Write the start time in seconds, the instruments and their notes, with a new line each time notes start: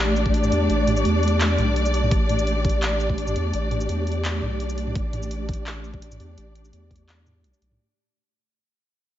Already playing: sub bass A1, string section A3 D4 G4 D5
0.16 shaker
0.26 kick
0.34 closed hi-hat
0.44 mid tom, shaker
0.52 sub bass E2, closed hi-hat
0.70 sub bass A1, closed hi-hat
0.87 closed hi-hat, mid tom
0.97 shaker
1.05 sub bass E2, closed hi-hat
1.23 closed hi-hat
1.28 closed hi-hat
1.41 clap, closed hi-hat, shaker
1.58 sub bass B1, closed hi-hat, mid tom
1.76 closed hi-hat
1.86 shaker
1.94 closed hi-hat
2.03 mid tom
2.11 sub bass A1, kick, closed hi-hat
2.29 closed hi-hat, mid tom
2.39 shaker
2.47 closed hi-hat
2.65 kick, closed hi-hat
2.69 closed hi-hat
2.82 clap, closed hi-hat
3.00 shaker
3.10 kick
3.18 closed hi-hat
3.27 mid tom, shaker
3.36 sub bass E2, closed hi-hat
3.53 sub bass A1, closed hi-hat
3.71 closed hi-hat, mid tom
3.81 shaker
3.89 sub bass E2, closed hi-hat
4.07 closed hi-hat
4.12 closed hi-hat
4.25 clap, closed hi-hat, shaker
4.42 sub bass B1, mid tom
4.60 closed hi-hat
4.69 shaker
4.78 closed hi-hat
4.87 mid tom
4.95 sub bass A1, kick, closed hi-hat
5.13 closed hi-hat, mid tom
5.23 shaker
5.31 closed hi-hat
5.49 kick, closed hi-hat
5.53 closed hi-hat
5.67 clap, closed hi-hat
5.84 shaker
5.94 kick
6.02 closed hi-hat
6.12 mid tom, shaker
6.20 sub bass E2, closed hi-hat
6.38 sub bass A1, closed hi-hat
6.55 closed hi-hat
6.65 shaker
6.73 sub bass E2, closed hi-hat
6.91 kick, closed hi-hat
6.96 closed hi-hat
7.09 clap, closed hi-hat, shaker
7.26 mid tom, shaker
7.44 sub bass B1, closed hi-hat
7.54 shaker
7.62 sub bass B1, closed hi-hat
7.71 mid tom